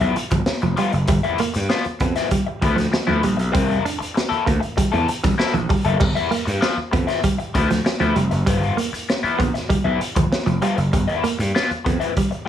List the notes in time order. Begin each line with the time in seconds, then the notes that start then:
0.01 B1 F3 B3 E4, closed hi-hat
0.16 muted overdriven electric guitar stroke, muted clean electric guitar stroke, closed hi-hat
0.31 G1 F3, muted overdriven electric guitar stroke, kick, closed hi-hat
0.46 muted slap bass stroke, muted clean electric guitar stroke, snare
0.62 F1 F3, muted overdriven electric guitar stroke, closed hi-hat
0.76 F3 G3 B3 F4, closed hi-hat
0.92 F#1, muted overdriven electric guitar stroke, closed hi-hat
1.07 G1 G3, muted overdriven electric guitar stroke, kick, closed hi-hat
1.23 F3 B3 E4, muted clean electric guitar stroke, closed hi-hat
1.38 A#3, muted overdriven electric guitar stroke, muted slap bass stroke, closed hi-hat
1.54 G2, muted overdriven electric guitar stroke, closed hi-hat
1.69 F3 B3 F4, snare
1.84 muted slap bass stroke, closed hi-hat
2.00 F2 B3, muted overdriven electric guitar stroke, kick, closed hi-hat
2.16 F3 B3 E4, snare, closed hi-hat
2.31 G3, kick, closed hi-hat
2.46 muted overdriven electric guitar stroke
2.62 D2 F3 B3 E4, muted clean electric guitar stroke, kick, closed hi-hat
2.76 F3, muted overdriven electric guitar stroke, snare, closed hi-hat
2.92 muted clean electric guitar stroke, muted overdriven electric guitar stroke, snare
3.07 D2 F3 B3 E4
3.22 A#1 G3, muted overdriven electric guitar stroke, closed hi-hat
3.37 B1, muted overdriven electric guitar stroke, closed hi-hat
3.52 C2 A#3 C4 E4 A#4, kick, closed hi-hat
3.70 muted clean electric guitar stroke, closed hi-hat
3.85 D4, closed hi-hat
3.99 muted overdriven electric guitar stroke, muted slap bass stroke, closed hi-hat
4.14 muted overdriven electric guitar stroke, snare
4.29 A#3 E4 A4, muted slap bass stroke, closed hi-hat
4.44 D2 A#3, muted overdriven electric guitar stroke, kick, closed hi-hat
4.60 muted overdriven electric guitar stroke, closed hi-hat
4.77 G3, muted overdriven electric guitar stroke, muted slap bass stroke, kick, closed hi-hat
4.92 E2 A#3 E4 A4, closed hi-hat
5.08 muted overdriven electric guitar stroke, muted clean electric guitar stroke, closed hi-hat
5.24 C2 E3, muted overdriven electric guitar stroke, kick, snare, closed hi-hat
5.38 A#3 E4 A4, muted clean electric guitar stroke, muted slap bass stroke, snare
5.54 A#1 E3, closed hi-hat
5.69 G3, muted overdriven electric guitar stroke, kick, open hi-hat
5.85 F#1 A#3 E4 A4, closed hi-hat
6.00 G1 G3, muted overdriven electric guitar stroke, kick, crash
6.15 F3 B3 E4, muted clean electric guitar stroke, closed hi-hat
6.31 A#3, muted overdriven electric guitar stroke, muted slap bass stroke, closed hi-hat
6.45 G2, muted overdriven electric guitar stroke, closed hi-hat
6.61 F3 B3 F4, snare
6.77 muted slap bass stroke
6.91 F2 B3, muted overdriven electric guitar stroke, kick, closed hi-hat
7.07 F3 B3 E4, snare, closed hi-hat
7.23 G3, kick, closed hi-hat
7.38 muted overdriven electric guitar stroke, closed hi-hat
7.54 D2 F3 B3 E4, muted clean electric guitar stroke, kick, closed hi-hat
7.69 F3, muted overdriven electric guitar stroke, snare, closed hi-hat
7.85 muted clean electric guitar stroke, muted overdriven electric guitar stroke, snare
8.00 D2 F3 B3 E4, closed hi-hat
8.16 F1 G3, muted overdriven electric guitar stroke, closed hi-hat
8.31 F#1, muted overdriven electric guitar stroke, closed hi-hat
8.46 G1 F3 G3 B3 F4, kick, closed hi-hat
8.61 muted clean electric guitar stroke, closed hi-hat
8.77 A#3, closed hi-hat
8.93 muted overdriven electric guitar stroke, muted slap bass stroke, closed hi-hat
9.09 muted overdriven electric guitar stroke, snare
9.23 F3 B3 E4, muted slap bass stroke, closed hi-hat
9.39 A#1 B3, muted overdriven electric guitar stroke, kick, closed hi-hat
9.54 muted overdriven electric guitar stroke, snare, closed hi-hat
9.69 G3, muted overdriven electric guitar stroke, muted slap bass stroke, kick, closed hi-hat
9.84 B1 F3 B3 E4
10.00 muted clean electric guitar stroke, muted overdriven electric guitar stroke, closed hi-hat
10.16 G1 F3, muted overdriven electric guitar stroke, kick, closed hi-hat
10.32 muted clean electric guitar stroke, snare
10.46 F1 F3, muted overdriven electric guitar stroke, closed hi-hat
10.62 F3 G3 B3 F4, closed hi-hat
10.77 F#1, muted overdriven electric guitar stroke, closed hi-hat
10.93 G1 G3, muted overdriven electric guitar stroke, kick, closed hi-hat
11.08 F3 B3 E4, muted clean electric guitar stroke, closed hi-hat
11.23 A#3, muted overdriven electric guitar stroke, muted slap bass stroke, closed hi-hat
11.39 G2, muted overdriven electric guitar stroke, closed hi-hat
11.55 F3 B3 F4, snare
11.71 muted slap bass stroke, closed hi-hat
11.85 F2 B3, muted overdriven electric guitar stroke, kick, closed hi-hat
12.00 F3 B3 E4, closed hi-hat
12.17 G3, kick, closed hi-hat
12.31 muted overdriven electric guitar stroke, closed hi-hat